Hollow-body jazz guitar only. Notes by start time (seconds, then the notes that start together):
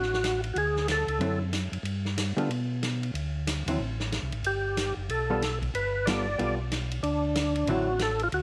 1.20 D3 F#3 C4 E4
2.37 G3 B3 F4 A4
3.68 D3 F#3 C4 E4
5.30 G3 B3 F4 A4
6.07 G3 B3 F4 A4
6.38 G3 B3 F4 A4
7.68 D3 F#3 C4 E4